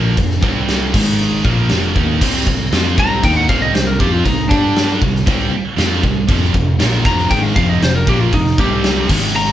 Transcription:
Already playing: A#1 A#2 F3 A#3
0.17 F1 F2 C3, kick, crash
0.30 snare
0.41 C2 C3 G3 C4, kick
0.68 snare, crash
0.93 G#1 G#2 D#3 G#3, kick, crash
1.07 snare
1.19 crash
1.44 A#1 A#2 F3 A#3, kick
1.69 F1 F2 C3 F3, snare, crash
1.95 D#2 D#3 A#3 D#4, kick
2.21 C2 C3 G3 C4, kick, crash
2.34 snare
2.47 C2 C3 G3, kick
2.72 F2 F3 C4 F4, snare, crash
2.97 C2 C3 G3 C4 A#5, kick
3.22 D#2 D#3 A#3 D#4 G5, kick, crash
3.37 F#5
3.48 C2 C3 G3 C4 F5, kick
3.62 D#5
3.74 C2 C3 G3 C5, snare, crash
3.87 A#4
3.99 F2 F3 C4 F4 G4, kick
4.12 F4
4.24 C2 C3 G3 D#4, kick, crash
4.49 G2 G3 D4 G4, kick
4.76 snare, crash
5.01 C2 C3 G3, kick
5.15 snare
5.27 C2 C3 G3 C4, kick, crash
5.52 muted fingered electric bass stroke, muted overdriven electric guitar stroke, muted distorted electric guitar stroke
5.77 F2 F3 C4 F4, snare, crash
6.02 C2 C3 G3, kick
6.28 F1 F2 C3 F3, kick, crash
6.42 snare
6.54 F1 F2 C3, kick
6.79 A#1 A#2 F3 A#3, snare, crash
7.05 F1 F2 C3 F3 A#5, kick
7.18 snare
7.30 G#1 G#2 D#3 G#3 G5, kick, crash
7.43 F5
7.56 F1 F2 C3 F3 F5, kick
7.69 D#5
7.82 F1 F2 C3 C5, snare, crash
7.96 A#4
8.07 A#1 A#2 F3 A#3 G4, kick
8.21 F4
8.33 F1 F2 C3 D#4, kick, crash
8.46 snare
8.58 C2 C3 G3 C4 G4, kick
8.84 snare, crash
9.09 G#1 G#2 D#3 G#3, kick, crash
9.22 snare
9.34 A#5, crash

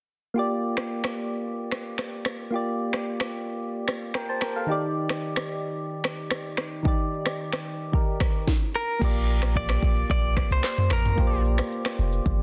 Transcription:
0.34 A#3 F4 G4
0.39 D5
0.77 finger snap, cross-stick
1.04 finger snap, cross-stick
1.72 finger snap, cross-stick
1.98 finger snap, cross-stick
2.25 finger snap, cross-stick
2.51 A#3 F4 G4
2.55 D5
2.93 finger snap, cross-stick
3.20 finger snap, cross-stick
3.88 finger snap, cross-stick
4.14 A#4 G5, finger snap, cross-stick
4.29 C5 A5
4.41 A#4 G5, finger snap, cross-stick
4.56 A4 F5
4.66 D#3 D#4 G4
4.71 D5
5.09 finger snap, cross-stick
5.36 finger snap, cross-stick
6.04 finger snap, cross-stick
6.31 finger snap, cross-stick
6.57 finger snap, cross-stick
6.83 D#3 D#4 G4, kick
6.88 D5
7.26 finger snap, cross-stick
7.53 finger snap, cross-stick
7.92 D#3 D#4 G4 A#4, kick
8.20 finger snap, kick, cross-stick
8.47 kick, snare
8.75 A#4
8.99 A#1 A#3 F4 G4, kick, crash, shaker
9.04 D5
9.28 shaker
9.42 finger snap, cross-stick, shaker
9.56 D5, kick, shaker
9.69 finger snap, cross-stick
9.82 A#1, kick, shaker
9.97 shaker
10.10 A#1 D5, kick, shaker
10.37 finger snap, kick, cross-stick, shaker
10.51 C2 C5, shaker
10.63 finger snap, cross-stick, clap, shaker
10.78 mid tom
10.90 A1 A#4, finger snap, cross-stick, open hi-hat, shaker
11.05 mid tom, shaker
11.15 A#1 A#3 F4 G4, kick, shaker
11.20 C5
11.27 D5
11.44 shaker
11.58 finger snap, cross-stick, shaker
11.72 shaker
11.85 finger snap, cross-stick
11.98 F1, shaker
12.12 shaker
12.26 G1, kick, shaker

